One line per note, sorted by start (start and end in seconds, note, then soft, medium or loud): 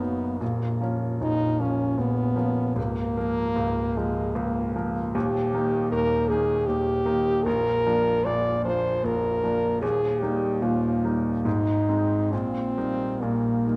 0.00 0.43 F#1 soft
0.00 0.44 F#2 soft
0.00 0.43 F#3 soft
0.00 0.44 A#3 soft
0.00 0.40 B3 medium
0.00 0.43 D#4 soft
0.39 0.80 A#0 soft
0.39 0.80 A#1 soft
0.39 0.93 A#3 medium
0.81 1.17 F3 soft
0.81 1.17 A#3 soft
0.81 1.18 C#4 soft
1.21 1.59 A#0 medium
1.21 1.59 A#1 soft
1.21 1.62 D#4 medium
1.60 1.95 F3 soft
1.60 1.95 A#3 soft
1.60 2.00 C#4 medium
1.60 1.95 C#4 soft
1.98 2.36 A#0 medium
1.98 2.36 A#1 soft
1.98 2.77 B3 medium
2.36 2.72 F3 soft
2.36 2.72 A#3 soft
2.36 2.72 C#4 soft
2.75 3.15 C#1 soft
2.75 3.15 C#2 medium
2.75 3.99 A#3 loud
3.17 3.53 F3 soft
3.17 3.53 A#3 soft
3.56 3.95 C#1 medium
3.56 3.95 C#2 medium
3.97 4.32 F3 soft
3.97 4.37 G#3 medium
3.97 4.33 A#3 soft
4.35 4.74 C#1 medium
4.35 4.74 C#2 medium
4.35 4.75 A#3 medium
4.76 5.11 F3 soft
4.76 5.11 A#3 medium
5.14 5.53 D#1 medium
5.14 5.53 D#2 medium
5.14 5.89 G4 medium
5.54 5.89 D#3 soft
5.54 5.89 A#3 soft
5.54 5.89 D#4 medium
5.91 6.28 D#1 medium
5.91 6.29 D#2 medium
5.91 6.30 A#4 loud
6.28 6.64 D#3 soft
6.28 6.64 A#3 soft
6.28 6.64 D#4 soft
6.28 6.68 G#4 loud
6.66 7.05 D#1 medium
6.66 7.05 D#2 medium
6.66 7.45 G4 loud
7.05 7.42 D#3 medium
7.05 7.42 A#3 soft
7.05 7.42 D#4 medium
7.44 7.85 A#0 medium
7.44 7.84 A#1 medium
7.44 8.27 A#4 loud
7.86 8.22 F3 soft
7.86 8.22 A#3 medium
7.86 8.22 D4 medium
8.25 8.64 A#0 medium
8.25 8.65 A#1 medium
8.25 8.64 D5 loud
8.65 9.00 F3 soft
8.65 9.01 A#3 soft
8.65 9.00 D4 soft
8.65 9.07 C5 loud
9.04 9.41 A#0 medium
9.04 9.41 A#1 medium
9.04 9.80 A#4 loud
9.43 9.78 F3 soft
9.43 9.78 A#3 soft
9.43 9.79 D4 medium
9.81 10.21 D#1 medium
9.81 10.21 D#2 medium
9.81 10.22 G#4 loud
10.21 10.58 G3 soft
10.21 10.58 A#3 soft
10.21 10.59 D#4 soft
10.21 10.64 G4 medium
10.62 11.02 D#1 medium
10.62 11.02 D#2 medium
10.62 11.17 F4 medium
11.04 11.42 G3 soft
11.04 11.42 A#3 soft
11.04 11.42 D#4 soft
11.45 11.87 G#1 medium
11.45 11.87 G#2 medium
11.45 12.34 D#4 medium
11.89 12.28 G#3 soft
11.89 12.28 C4 soft
11.89 12.29 D#4 soft
12.32 12.76 A#1 medium
12.32 12.76 A#2 medium
12.32 13.23 C4 medium
12.77 13.18 G3 soft
12.77 13.18 A#3 soft
12.77 13.18 D#4 soft
13.22 13.65 A#1 medium
13.22 13.65 A#2 soft
13.22 13.76 A#3 medium
13.67 13.76 G3 soft
13.67 13.76 A#3 soft
13.67 13.76 D#4 soft